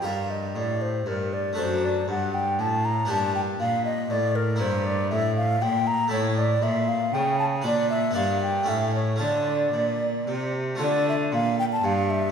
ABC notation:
X:1
M:3/4
L:1/16
Q:1/4=118
K:Gm
V:1 name="Flute"
f2 e2 d2 c2 B2 d2 | c2 d2 ^f2 g2 a2 b2 | a2 g2 f2 e2 d2 B2 | [K:Dm] c2 d2 e2 f2 g2 b2 |
^c2 d2 e2 f2 g2 a2 | d2 e2 f2 g2 e2 ^c2 | d8- d2 z2 | d2 e2 f2 g a f2 e2 |]
V:2 name="Harpsichord"
[GB]12 | [A,DA]12 | [B,DG]12 | [K:Dm] [B,E]12 |
[A,EA]12 | [Dd]4 [B,Dd]4 [A,^CA]4 | [A,FA]12 | [A,FA]12 |]
V:3 name="Harpsichord" clef=bass
G,,4 A,,4 G,,4 | ^F,,4 G,,4 A,,4 | G,,4 B,,4 A,,4 | [K:Dm] G,,4 A,,4 B,,4 |
A,,4 B,,4 ^C,4 | B,,4 G,,4 A,,4 | D,4 B,,4 C,4 | D,4 B,,4 G,,4 |]
V:4 name="Cello" clef=bass
G,,4 A,,4 G,,4 | ^F,,4 G,,4 A,,4 | G,,4 B,,4 A,,4 | [K:Dm] G,,4 A,,4 B,,4 |
A,,4 B,,4 ^C,4 | B,,4 G,,4 A,,4 | D,4 B,,4 C,4 | D,4 B,,4 G,,4 |]